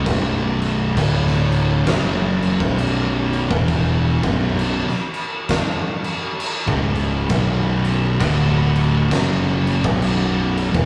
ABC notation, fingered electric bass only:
X:1
M:4/4
L:1/16
Q:"Swing" 1/4=66
K:Bdor
V:1 name="Fingered electric bass" clef=bass
B,,,,4 D,,,4 F,,,3 B,,,,4 E,,,- | E,,,2 B,,,,3 z8 C,,,3 | B,,,,4 D,,,4 F,,,3 B,,,,4 E,,, |]